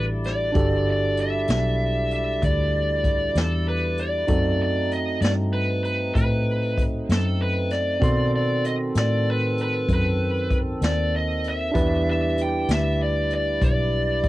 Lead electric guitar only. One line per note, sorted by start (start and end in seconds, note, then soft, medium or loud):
0.26 0.89 D5 medium
0.91 1.17 D5 medium
1.20 2.12 E5 medium
2.14 2.44 E5 medium
2.44 3.39 D5 medium
3.37 3.68 A4 medium
3.68 3.99 B4 medium
3.99 4.61 D5 medium
4.62 4.93 D5 medium
4.93 5.21 D#5 medium
5.22 5.30 D5 medium
5.53 5.83 B4 medium
5.84 6.14 B4 medium
6.15 6.81 B4 medium
7.11 7.42 A4 medium
7.42 7.70 B4 medium
7.71 8.30 D5 medium
8.36 8.64 D5 medium
8.66 8.74 D#5 medium
8.98 9.29 D5 medium
9.30 9.60 B4 medium
9.62 9.92 B4 medium
9.94 10.57 B4 medium
10.85 11.15 D5 medium
11.16 11.47 D#5 medium
11.49 12.09 E5 medium
12.10 12.40 E5 medium
12.42 12.72 G5 medium
12.72 13.02 E5 medium
13.02 13.33 D5 medium
13.34 13.63 D5 medium
13.64 14.29 D5 medium